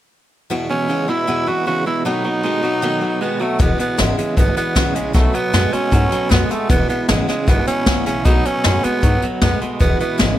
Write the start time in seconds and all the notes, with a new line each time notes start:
0.50 E2 B2 E3 G#3 B3 E4
0.69 E2 B2 E3 G#3 B3 C#4 E4
0.89 E2 C#3 E3 G#3 B3 E4
1.08 E2 B2 E3 G#3 B3 E4
1.27 E2 B2 E3 G#3 B3 E4
1.46 E2 B2 E3 G#3 B3 E4 F#4
1.65 E2 C#3 E3 G#3 B3 E4 F#4
1.85 E2 B2 E3 G#3 B3 E4
2.05 B2 D#3 F#3 A3 B3 D#4 F#4
2.24 B2 F#3 A3 B3 F#4
2.43 B2 D#3 G#3 A3 B3 F#4
2.62 B2 F#3 A3 B3 F#4
2.82 B2 D#3 F#3 A3 B3 F#4
3.01 B2 F#3 A3 B3 F#4
3.21 B2 D#3 G#3 A3 B3 F#4
3.39 B2 F#3 A3 B3 F#4
3.59 E1 E2 B2 E3 G#3 B3 E4, kick, closed hi-hat
3.78 E2 B2 E3 G#3 B3 E4, muted upright bass stroke, closed hi-hat
3.98 G#1 E2 B2 C#3 E3 G#3 B3 E4, snare, closed hi-hat
4.17 E2 C#3 E3 G#3 B3 E4, muted upright bass stroke, closed hi-hat
4.37 G#1 E2 B2 E3 G#3 B3 E4, kick, closed hi-hat
4.56 E2 B2 E3 G#3 B3 E4, muted upright bass stroke, closed hi-hat
4.75 G#1 E2 B2 C#3 E3 G#3 B3 E4, kick, snare, closed hi-hat
4.95 A#1 E2 C#3 E3 G#3 B3 E4, closed hi-hat
5.13 B1 B2 D#3 F#3 A3 B3 F#4, kick, snare, closed hi-hat
5.33 B2 F#3 A3 B3 F#4, closed hi-hat
5.53 F#2 B2 D#3 G#3 A3 B3 F#4, snare, closed hi-hat
5.72 B2 G#3 A3 B3 C#4 F#4, muted upright bass stroke, closed hi-hat
5.91 G#2 B2 D#3 F#3 A3 B3 F#4, kick, closed hi-hat
6.10 B2 F#3 A3 B3 F#4, muted upright bass stroke, closed hi-hat
6.29 F#2 B2 D#3 G#3 A3 B3 F#4, kick, snare, closed hi-hat
6.49 B2 G#3 A3 B3 F#4, muted upright bass stroke, closed hi-hat
6.69 E1 E2 B2 E3 G#3 B3 E4, kick, snare, closed hi-hat
6.88 E2 B2 E3 G#3 B3 E4, muted upright bass stroke, closed hi-hat
7.08 G#1 E2 B2 C#3 E3 G#3 B3 E4, snare, closed hi-hat
7.27 E2 C#3 E3 G#3 B3 E4, muted upright bass stroke, snare, closed hi-hat
7.47 G#1 E2 B2 E3 G#3 B3 E4, kick, snare, closed hi-hat
7.66 E2 B2 E3 G#3 B3 C#4 E4, muted upright bass stroke, closed hi-hat
7.86 G#1 E2 B2 C#3 E3 G#3 B3 E4, kick, snare, closed hi-hat
8.06 B1 E2 C#3 E3 G#3 B3 C#4 E4, closed hi-hat
8.25 B1 B2 D#3 F#3 A3 B3 D#4 F#4, kick, closed hi-hat
8.44 B2 F#3 A3 B3 C#4 F#4, closed hi-hat
8.64 F#2 B2 D#3 G#3 A3 B3 F#4, snare, closed hi-hat
8.83 B2 G#3 A3 B3 F#4, muted upright bass stroke, closed hi-hat
9.02 G#2 B2 D#3 F#3 A3 B3 F#4, kick, closed hi-hat
9.22 B2 F#3 A3 B3 F#4, muted upright bass stroke, closed hi-hat
9.41 F#2 B2 D#3 G#3 A3 B3 F#4, kick, snare, closed hi-hat
9.60 B2 G#3 A3 B3 F#4, muted upright bass stroke, closed hi-hat
9.79 E1 E2 B2 E3 G#3 B3 E4, kick, closed hi-hat
9.99 E2 B2 E3 G#3 B3 E4, muted upright bass stroke, closed hi-hat
10.18 G#1 E2 B2 C#3 E3 G#3 B3 E4, snare, closed hi-hat